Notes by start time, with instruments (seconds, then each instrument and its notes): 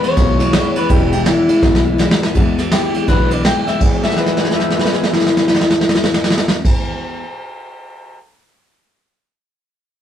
0.02 clean electric guitar E2 C#3 C#5, steel-string acoustic guitar E3 G#3 B3 E4, muted upright bass stroke, ride
0.16 upright bass B1, clean electric guitar E2 B2, steel-string acoustic guitar E3 G#3 B3 E4, kick, snare, ride
0.39 clean electric guitar E2 B2, steel-string acoustic guitar E3 G#3 B3 E4, snare, ride
0.53 steel-string acoustic guitar E2 B2 E3 G#3 B3 E4, clean electric guitar E2 C#3, snare, ride
0.75 clean electric guitar E2 C#3 B4, steel-string acoustic guitar E3 G#3 B3 E4, muted upright bass stroke, ride
0.89 upright bass E1, steel-string acoustic guitar E2 B2 E3 G#3 B3 E4, clean electric guitar E2 B2 G4, kick, ride
1.11 clean electric guitar E2 B2 G4, steel-string acoustic guitar E3 G#3 B3 E4, ride
1.25 steel-string acoustic guitar E2 B2 E3 G#3 B3 E4, clean electric guitar E2 C#3 E4, snare, ride
1.48 clean electric guitar E2 C#3, steel-string acoustic guitar E3 G#3 B3 E4, muted upright bass stroke, ride
1.62 upright bass B1, clean electric guitar E2 B2, steel-string acoustic guitar E3 G#3 B3 E4, kick, snare
1.75 snare
1.85 clean electric guitar E2 B2, steel-string acoustic guitar E3 G#3 B3 E4
1.98 steel-string acoustic guitar E2 B2 E3 G#3 B3 E4, clean electric guitar E2 C#3, snare
2.11 snare
2.21 clean electric guitar E2 C#3, steel-string acoustic guitar E3 G#3 B3 E4, muted upright bass stroke, snare
2.34 steel-string acoustic guitar E2 B2 E3 G#3 B3 E4, clean electric guitar E2 B2, upright bass E2, kick, ride
2.58 clean electric guitar E2 B2, steel-string acoustic guitar E3 G#3 B3 E4, snare, ride
2.71 clean electric guitar E2 C#3 G4, steel-string acoustic guitar E3 G#3 B3 E4, snare, ride
2.94 clean electric guitar E2 C#3, steel-string acoustic guitar E3 G#3 B3 E4, muted upright bass stroke, ride
3.08 upright bass B1, steel-string acoustic guitar E2 B2 E3 G#3 B3 E4, clean electric guitar E2 D3 B4, kick, snare, ride
3.30 clean electric guitar E2 D3 D5, steel-string acoustic guitar E3 G#3 B3 E4, ride
3.44 clean electric guitar E2 C#3 G5, steel-string acoustic guitar E3 G#3 B3 E4, snare, ride
3.66 clean electric guitar E2 C#3 E5, steel-string acoustic guitar E3 G#3 B3 E4, muted upright bass stroke, snare, ride
3.79 steel-string acoustic guitar E2 B2 E3, upright bass E2, clean electric guitar E3 G#3 B3, kick, crash
3.83 steel-string acoustic guitar G#3 B3 E4, clean electric guitar E4
4.03 clean electric guitar E5, snare
4.10 snare
4.16 clean electric guitar B4, snare
4.26 snare
4.37 clean electric guitar G#4, snare
4.45 snare
4.51 clean electric guitar E5, snare
4.60 snare
4.70 snare
4.76 clean electric guitar B4, snare
4.85 snare
4.89 clean electric guitar G#4, snare
5.03 snare
5.12 clean electric guitar E4, snare
5.20 snare
5.27 snare
5.37 snare
5.48 snare
5.55 snare
5.61 snare
5.70 snare
5.81 snare
5.89 snare
5.95 snare
6.04 snare
6.14 snare
6.24 snare
6.30 snare
6.38 snare
6.48 snare
6.65 kick, crash